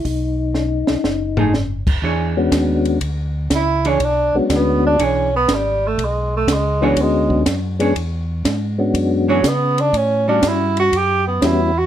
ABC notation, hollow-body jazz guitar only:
X:1
M:4/4
L:1/8
Q:"Swing" 1/4=121
K:Emix
V:1 name="Hollow-body jazz guitar"
z4 z [A,^DG] z2 | [E,DGc] z6 [E,DGc] | z4 [E,DGc] z3 | z3 [E,DGc] z3 [E,DGc] |
z4 z [E,DGc] z2 | z [=G,CF]3 z4 |]